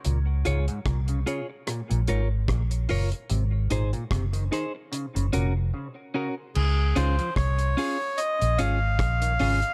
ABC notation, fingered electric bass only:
X:1
M:4/4
L:1/16
Q:"Swing 16ths" 1/4=74
K:Db
V:1 name="Fingered electric bass" clef=bass
D,,2 D,, z C,,2 z3 B,,, A,,,2 B,,,2 G,,, z | A,,,2 A,,, z G,,,2 z3 G,,, F,,,2 z4 | D,,2 D,, z C,,2 z3 B,,, A,,,2 B,,,2 A,,, z |]